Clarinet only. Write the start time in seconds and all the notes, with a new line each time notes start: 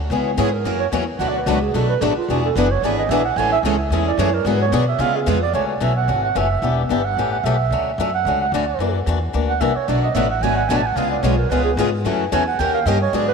0.38 C#5
0.53 A#4
0.80 C#5
1.19 F#5
1.29 D5
1.38 B4
1.47 F#4
1.62 G#4
1.75 A4
1.89 B4
2.02 G#4
2.17 F4
2.30 F#4
2.45 A4
2.57 B4
2.72 C#5
2.84 D5
2.99 D#5
3.10 E5
3.25 F#5
3.37 G#5
3.52 E5
4.07 D5
4.19 C#5
4.34 A#4
4.47 B4
4.61 C#5
4.74 D5
4.88 E5
5.01 F5
5.16 G#4
5.27 B4
5.43 D5
5.55 C#5
5.82 E5
5.96 F#5
6.23 F#5
6.37 E5
6.91 E5
7.05 F#5
7.32 F#5
7.45 E5
8.00 E5
8.14 F#5
8.41 F#5
8.54 D5
9.49 F#5
9.61 E5
9.76 C#5
9.88 D5
10.04 D#5
10.15 E5
10.31 F#5
10.43 G#5
10.57 F#5
10.68 G#5
10.77 A5
10.86 F#5
10.96 F5
11.11 D5
11.22 C#5
11.38 A#4
11.49 B4
11.64 G#4
12.32 G#5
12.47 F#5
12.59 G5
12.74 F5
12.87 D#5
13.02 C#5
13.14 D5
13.28 B4